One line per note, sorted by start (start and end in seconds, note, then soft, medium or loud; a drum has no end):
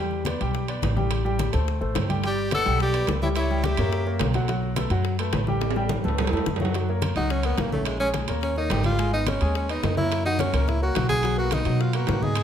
0.00 0.35 E2 medium
0.00 0.22 G3 medium
0.00 0.22 G4 medium
0.00 0.22 G5 medium
0.11 high conga soft
0.25 0.38 B3 medium
0.25 0.39 B4 medium
0.25 0.39 D5 medium
0.25 high bongo medium
0.25 high conga medium
0.25 high timbale medium
0.25 low timbale medium
0.40 0.80 B1 medium
0.40 0.64 G3 medium
0.40 0.64 G4 medium
0.40 0.64 G5 medium
0.40 high timbale medium
0.55 high bongo medium
0.55 high conga soft
0.68 0.92 B3 medium
0.68 0.92 B4 medium
0.68 0.92 D5 medium
0.68 high conga soft
0.68 high timbale medium
0.82 1.48 A1 medium
0.82 high bongo medium
0.82 low bongo medium
0.82 high conga medium
0.82 high timbale medium
0.82 low timbale medium
0.96 1.20 G3 medium
0.96 1.20 G4 medium
0.96 1.20 G5 medium
0.96 high conga medium
1.11 high bongo medium
1.11 high conga soft
1.11 high timbale medium
1.25 1.48 G3 medium
1.25 1.48 G4 medium
1.25 1.48 G5 medium
1.25 high bongo soft
1.25 high conga soft
1.39 high bongo medium
1.39 high conga medium
1.39 high timbale medium
1.39 low timbale medium
1.52 1.80 D2 loud
1.52 1.76 A3 medium
1.52 1.76 A4 medium
1.52 1.76 C5 medium
1.52 high bongo soft
1.52 high conga soft
1.52 low conga medium
1.52 high timbale medium
1.68 high bongo medium
1.68 high conga soft
1.81 1.95 A1 medium
1.81 2.04 A3 medium
1.81 2.04 A4 medium
1.81 2.04 C5 medium
1.81 high bongo soft
1.81 high conga soft
1.95 2.61 G1 medium
1.95 high bongo medium
1.95 low bongo medium
1.95 high conga medium
1.95 high timbale medium
1.95 low timbale medium
2.09 2.21 G3 medium
2.09 2.21 G4 medium
2.09 2.21 G5 medium
2.09 high conga medium
2.09 high timbale medium
2.24 2.47 G3 medium
2.24 2.47 G4 medium
2.24 2.51 G4 loud
2.24 2.51 D5 medium
2.24 2.47 G5 medium
2.24 high bongo medium
2.24 high timbale medium
2.38 high conga soft
2.51 2.63 B3 medium
2.51 2.79 A4 loud
2.51 2.63 B4 medium
2.51 2.64 D5 medium
2.51 2.79 F#5 medium
2.51 high bongo medium
2.51 high conga loud
2.51 high timbale loud
2.51 low timbale medium
2.65 3.05 B1 loud
2.65 2.89 G3 medium
2.65 2.89 G4 medium
2.65 2.89 G5 medium
2.65 high timbale medium
2.80 3.07 G4 loud
2.80 3.07 D5 medium
2.80 high bongo medium
2.80 high conga soft
2.94 3.17 B3 medium
2.94 3.17 B4 medium
2.94 3.17 D5 medium
2.94 high conga soft
2.94 high timbale medium
3.07 3.73 C#2 medium
3.07 high bongo medium
3.07 low bongo medium
3.07 high conga medium
3.07 high timbale medium
3.07 low timbale medium
3.22 3.45 G3 medium
3.22 3.29 E4 medium
3.22 3.45 G4 medium
3.22 3.29 C#5 medium
3.22 3.46 G5 medium
3.22 high conga medium
3.36 3.65 E4 medium
3.36 3.65 C#5 medium
3.36 high bongo medium
3.36 high conga soft
3.36 high timbale medium
3.50 3.74 G3 medium
3.50 3.74 G4 medium
3.50 3.74 G5 medium
3.50 high bongo soft
3.50 high conga soft
3.64 4.21 G4 medium
3.64 4.20 E5 medium
3.64 high bongo medium
3.64 high conga medium
3.64 high timbale medium
3.64 low timbale medium
3.77 4.18 F#2 medium
3.77 4.02 A#3 medium
3.77 4.02 A#4 medium
3.77 4.02 C#5 medium
3.77 high bongo soft
3.77 high conga soft
3.77 low conga medium
3.77 high timbale medium
3.92 high bongo medium
3.92 high conga soft
4.06 4.30 A#3 medium
4.06 4.30 A#4 medium
4.06 4.30 C#5 medium
4.06 high bongo soft
4.06 high conga soft
4.19 4.85 B1 medium
4.19 high bongo medium
4.19 low bongo medium
4.19 high conga medium
4.19 high timbale medium
4.19 low timbale medium
4.34 4.46 F#3 medium
4.34 4.47 F#4 medium
4.34 4.47 F#5 medium
4.34 high conga medium
4.34 high timbale medium
4.48 4.72 F#3 medium
4.48 4.72 F#4 medium
4.48 4.72 F#5 medium
4.48 high bongo medium
4.48 high timbale medium
4.62 high conga soft
4.76 4.89 A3 medium
4.76 4.89 A4 medium
4.76 4.89 B4 medium
4.76 high bongo medium
4.76 high conga medium
4.76 high timbale loud
4.76 low timbale medium
4.90 5.30 F#2 medium
4.90 5.14 F#3 medium
4.90 5.14 F#4 medium
4.90 5.15 F#5 medium
4.90 high timbale medium
5.05 high bongo medium
5.05 high conga soft
5.19 5.43 A3 medium
5.19 5.43 A4 medium
5.19 5.43 B4 medium
5.19 high conga soft
5.19 high timbale medium
5.33 5.98 A1 medium
5.33 high bongo medium
5.33 low bongo medium
5.33 high conga medium
5.33 high timbale medium
5.33 low timbale medium
5.47 5.71 G3 medium
5.47 5.71 G4 medium
5.47 5.71 G5 medium
5.47 high conga medium
5.61 high bongo medium
5.61 high conga soft
5.61 high timbale medium
5.71 high timbale medium
5.75 5.99 G3 medium
5.75 5.99 G4 medium
5.75 5.99 G5 medium
5.75 high bongo soft
5.75 high conga soft
5.89 high bongo medium
5.89 high conga loud
5.89 low timbale medium
6.04 6.30 C#2 medium
6.04 6.27 A3 medium
6.04 6.28 A4 medium
6.04 6.28 B4 medium
6.04 high bongo soft
6.04 high conga soft
6.04 low conga medium
6.08 low timbale medium
6.18 high bongo medium
6.18 high conga soft
6.18 low conga medium
6.18 low timbale medium
6.27 low timbale medium
6.32 6.45 E2 medium
6.32 6.56 A3 medium
6.32 6.55 A4 medium
6.32 6.56 B4 medium
6.32 high bongo soft
6.32 high conga soft
6.37 low timbale medium
6.46 7.11 F#2 medium
6.46 high bongo medium
6.46 low bongo medium
6.46 high conga medium
6.56 high conga medium
6.56 low timbale medium
6.61 6.72 F#3 medium
6.61 6.72 F#4 medium
6.61 6.73 F#5 medium
6.61 low timbale medium
6.74 6.86 F#3 medium
6.74 6.86 F#4 medium
6.74 6.86 F#5 medium
6.74 high bongo medium
6.74 high conga soft
6.74 high timbale medium
6.89 7.12 A#3 medium
6.89 7.12 A#4 medium
6.89 7.12 C#5 medium
6.89 high conga soft
7.02 high bongo medium
7.02 high conga medium
7.02 high timbale loud
7.02 low timbale medium
7.16 7.55 C#2 medium
7.16 7.40 F#3 medium
7.16 7.32 D#4 medium
7.16 7.40 F#4 medium
7.16 7.40 F#5 medium
7.16 high timbale medium
7.30 7.47 C#4 medium
7.30 high bongo medium
7.30 high conga soft
7.43 7.56 A#3 medium
7.43 7.62 B3 medium
7.43 7.56 A#4 medium
7.43 7.56 C#5 medium
7.43 high conga soft
7.43 high timbale medium
7.58 8.23 A#1 medium
7.58 7.70 A#3 medium
7.58 7.72 A#3 medium
7.58 7.71 A#4 medium
7.58 7.70 C#5 medium
7.58 high bongo medium
7.58 low bongo medium
7.58 high conga medium
7.58 high timbale medium
7.58 low timbale medium
7.72 7.87 A3 medium
7.72 7.96 C#4 medium
7.72 7.96 C#5 medium
7.72 7.96 E5 medium
7.72 high conga medium
7.85 7.99 G#3 medium
7.85 high bongo medium
7.85 high conga soft
7.85 high timbale medium
8.00 8.23 G#3 medium
8.00 8.09 C#4 loud
8.00 8.24 G#4 medium
8.00 8.24 G#5 medium
8.00 high bongo soft
8.00 high conga soft
8.14 high bongo medium
8.14 high conga medium
8.14 high timbale medium
8.14 low timbale medium
8.28 8.68 D#2 medium
8.28 8.52 A#3 medium
8.28 8.52 A#4 medium
8.28 8.52 C#5 medium
8.28 high bongo soft
8.28 high conga soft
8.28 low conga medium
8.28 high timbale medium
8.42 8.56 C#4 medium
8.42 high bongo medium
8.42 high conga soft
8.56 8.69 A#3 medium
8.56 8.83 D#4 medium
8.56 8.69 A#4 medium
8.56 8.69 C#5 medium
8.56 high bongo soft
8.56 high conga soft
8.70 9.36 G#1 medium
8.70 8.94 G3 medium
8.70 8.94 G4 medium
8.70 8.94 G5 medium
8.70 high bongo medium
8.70 low bongo medium
8.70 high conga medium
8.70 high timbale medium
8.70 low timbale medium
8.84 9.11 F4 medium
8.84 high conga medium
8.84 high timbale medium
8.99 9.10 G#3 medium
8.99 9.11 G#4 medium
8.99 9.11 G#5 medium
8.99 high bongo medium
8.99 high timbale medium
9.13 9.36 B3 medium
9.13 9.30 D#4 medium
9.13 9.36 B4 medium
9.13 9.37 D#5 medium
9.27 9.56 C#4 medium
9.27 high bongo medium
9.27 high conga medium
9.27 high timbale medium
9.27 low timbale medium
9.41 9.81 D#2 medium
9.41 9.64 G#3 medium
9.41 9.65 G#4 medium
9.41 9.65 G#5 medium
9.41 high timbale medium
9.55 9.69 C#4 medium
9.55 high bongo medium
9.55 high conga soft
9.69 9.81 B3 medium
9.69 9.96 D#4 medium
9.69 9.81 B4 medium
9.69 9.81 D#5 medium
9.69 high conga soft
9.69 high timbale medium
9.83 10.48 F#2 medium
9.83 9.95 B3 medium
9.83 9.95 B4 medium
9.83 9.95 D#5 medium
9.83 high bongo medium
9.83 low bongo medium
9.83 high conga medium
9.83 high timbale medium
9.83 low timbale medium
9.97 10.20 A#3 medium
9.97 10.24 E4 loud
9.97 10.20 A#4 medium
9.97 10.21 C#5 medium
9.97 high conga medium
10.11 high bongo medium
10.11 high conga soft
10.11 high timbale medium
10.25 10.49 F#3 medium
10.25 10.41 D#4 loud
10.25 10.49 F#4 medium
10.25 10.49 F#5 medium
10.25 high bongo soft
10.25 high conga soft
10.39 10.70 C#4 medium
10.39 high bongo medium
10.39 high conga medium
10.39 high timbale medium
10.39 low timbale medium
10.53 10.93 C#2 medium
10.53 10.77 A#3 medium
10.53 10.77 A#4 medium
10.53 10.77 C#5 medium
10.53 high bongo soft
10.53 high conga soft
10.53 low conga medium
10.53 high timbale medium
10.68 10.82 E4 medium
10.68 high bongo medium
10.68 high conga soft
10.68 low conga medium
10.82 10.94 A#3 medium
10.82 11.08 F#4 medium
10.82 10.94 A#4 medium
10.82 10.94 C#5 medium
10.82 high bongo soft
10.82 high conga soft
10.95 11.60 B1 medium
10.95 11.19 F#3 medium
10.95 11.19 F#4 medium
10.95 11.19 F#5 medium
10.95 high bongo medium
10.95 low bongo medium
10.95 high conga medium
10.95 high timbale medium
10.95 low timbale medium
11.09 11.36 G#4 loud
11.09 high conga medium
11.09 high timbale medium
11.23 11.35 F#3 medium
11.23 11.35 F#4 medium
11.23 11.35 F#5 medium
11.23 high bongo medium
11.23 high conga soft
11.23 high timbale medium
11.37 11.61 A#3 medium
11.37 11.55 F#4 medium
11.37 11.61 A#4 medium
11.37 11.61 B4 medium
11.37 high conga soft
11.51 11.83 D#4 medium
11.51 high bongo medium
11.51 high conga medium
11.51 high timbale loud
11.51 low timbale medium
11.65 12.05 B2 loud
11.65 11.89 F#3 medium
11.65 11.89 F#4 medium
11.65 11.89 F#5 medium
11.65 high timbale medium
11.81 11.96 F4 medium
11.81 high bongo medium
11.93 12.06 A#3 medium
11.93 12.24 F#4 medium
11.93 12.06 A#4 medium
11.93 12.06 B4 medium
11.93 high conga soft
11.93 high timbale medium
12.07 12.43 G#2 medium
12.07 12.20 A#3 medium
12.07 12.20 A#4 medium
12.07 12.20 B4 medium
12.07 high bongo medium
12.07 low bongo medium
12.07 high conga medium
12.07 high timbale medium
12.07 low timbale medium
12.23 12.43 B3 medium
12.23 12.43 G#4 loud
12.23 12.43 B4 medium
12.23 12.43 D#5 medium
12.23 high conga medium
12.35 high bongo medium
12.35 high conga soft
12.35 high timbale medium